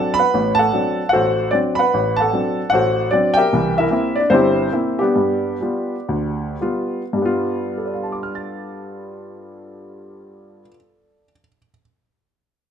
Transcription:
Already playing: F#3 C4 D4 A4 F#5 A5
0.14 B5
0.19 B4 F#5
0.34 A1 A2
0.55 A5
0.59 A4 F#5
0.73 F#3 C4 D4
1.09 F#4 A4 F#5
1.13 A1 C5
1.51 F#3 C4 D4 D5
1.75 F#5 B5
1.80 B4
1.94 A1
2.16 F#5 A5
2.22 A4
2.33 F#3 C4 D4
2.70 A1 A4 F#5
2.74 F#4 C5
3.11 F#3 C4 D4 D5
3.34 G4 E5 G5
3.38 A#4
3.53 C2 E3
3.78 E4 A#4 E5
3.91 A#3 C4 E4
4.16 D5
4.20 D4
4.30 G1 G2 C4 E4 G4 C5
4.72 A#3 C4 E4
4.99 G3 B3 D4 G4
5.16 G2
5.61 G3 B3 F4
6.09 D2
6.61 G3 B3 F4
7.13 G2
7.17 G3
7.22 B3 F4
7.78 A4
7.85 D5
7.94 F5
8.03 A5
8.12 D6
8.23 F6
8.35 A6

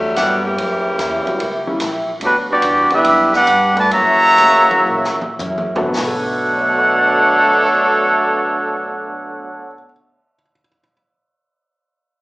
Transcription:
Already playing: E2 D3 F#3 G3 A3
0.16 G2 D3 E3 F#3 G3 B3 D4 F#4 G4 D5 E5 F#5, snare, hi-hat pedal, ride
0.44 A#2 C#3 E3 A#3 G4
0.56 F#2 F#3 A#3 E4 G4, ride
0.85 kick
0.98 E2 F#3 A#3 E4 G4, snare, hi-hat pedal, ride
1.26 E3 G3 A#3 C#4 F#4, muted upright bass stroke, ride
1.39 C#2 F#3 A#3 E4 G4, ride
1.67 E3 G3 A#3 C#4 E4
1.79 A#1 F#3 A#3 E4 G4, snare, hi-hat pedal, ride
2.20 D2 D3 F#3 G3 B3 D4 F#4 B4, ride
2.49 G3 B3 D4 F#4 G4 D5
2.62 E2 G3 B3 D4 F#4, hi-hat pedal, ride
2.90 D3 G3 B3 D4 E4 G4 B4 E5 F#5, ride
3.03 F#2 G3 B3 D4 F#4, ride
3.33 B3 D4 G4 B4 F#5, snare
3.47 G2 G3 B3 D4, hi-hat pedal, ride
3.76 A3 F#4 B4 D5 A5, ride
3.91 F#2 C#3 E3 F#3 A#3 C#4 E4 F#4 A#4 C#5 E5 A#5, ride
4.37 A2 F#3 C#4 E4 A#4, hi-hat pedal, ride
4.70 E3 F#3 A#3 C#4 F#4, muted upright bass stroke, ride
4.87 A#2 F#3 C#4 E4 A#4
5.04 snare
5.21 mid tom
5.39 F#2 F#3 C#4 E4 A#4, hi-hat pedal, mid tom
5.58 mid tom
5.76 D3 A3 B3 F#4 C#5, floor tom
5.83 B2
5.89 B3
5.93 B1 B2 F#3 A3 D4 C#5, snare, open hi-hat
5.97 D4 A4 F#5
6.03 C#5
6.07 A4
6.54 C#5
6.61 E5
6.69 A5
6.79 C#6
6.88 E6
6.99 A6
7.11 C#7

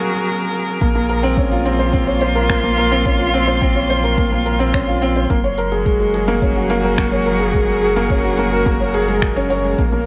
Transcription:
Already playing: F#3 A#3 C4 F#4 G#4 A#4
0.81 A#1 A#3, kick, closed hi-hat
0.93 A#3 F4, closed hi-hat
1.09 A#4, closed hi-hat
1.23 C4, closed hi-hat
1.37 C#4, kick, closed hi-hat
1.51 F4, closed hi-hat
1.66 C4, closed hi-hat
1.74 C6
1.79 C5, closed hi-hat
1.93 C4, kick, closed hi-hat
2.07 C#5, closed hi-hat
2.21 C5, closed hi-hat
2.35 A#4, closed hi-hat
2.50 A#3, finger snap, kick, closed hi-hat
2.64 A#3, closed hi-hat
2.78 A#4, closed hi-hat
2.92 C4, closed hi-hat
3.06 C#4, kick, closed hi-hat
3.20 F4, closed hi-hat
3.34 C4, closed hi-hat
3.48 C5, closed hi-hat
3.62 C4, kick, closed hi-hat
3.76 C#5, closed hi-hat
3.90 C5, closed hi-hat
4.04 A#4, closed hi-hat
4.17 A#3, kick, closed hi-hat
4.31 A#3, closed hi-hat
4.46 A#4, closed hi-hat
4.59 C4, closed hi-hat
4.74 C#4, finger snap, kick, closed hi-hat
4.88 F4, closed hi-hat
5.02 C4, closed hi-hat
5.16 C5, closed hi-hat
5.30 F#1 F#3 A#3, kick, closed hi-hat
5.44 C#5, closed hi-hat
5.57 A#4, closed hi-hat
5.62 G#4
5.67 F#4
5.72 G#4, closed hi-hat
5.86 G#3, kick, closed hi-hat
6.00 G#3, closed hi-hat
6.14 G#4, closed hi-hat
6.28 A#3, closed hi-hat
6.42 C#4, kick, closed hi-hat
6.56 F#4, closed hi-hat
6.70 A#3, closed hi-hat
6.84 A#4, closed hi-hat
6.98 A#3, finger snap, kick, closed hi-hat
7.12 C#5, closed hi-hat
7.26 A#4, closed hi-hat
7.40 G#4, closed hi-hat
7.54 G#3, kick, closed hi-hat
7.68 G#3, closed hi-hat
7.82 G#4, closed hi-hat
7.96 A#3, closed hi-hat
8.10 C#4, kick, closed hi-hat
8.24 F#4, closed hi-hat
8.38 A#3, closed hi-hat
8.52 A#4, closed hi-hat
8.66 A#3, kick, closed hi-hat
8.80 C#5, closed hi-hat
8.94 G#4, closed hi-hat
9.08 G#3, closed hi-hat
9.22 finger snap, kick, closed hi-hat
9.36 C#4, closed hi-hat
9.50 C#5, closed hi-hat
9.64 G#3, closed hi-hat
9.78 A#1 A#3, kick, closed hi-hat
9.92 A#3, closed hi-hat

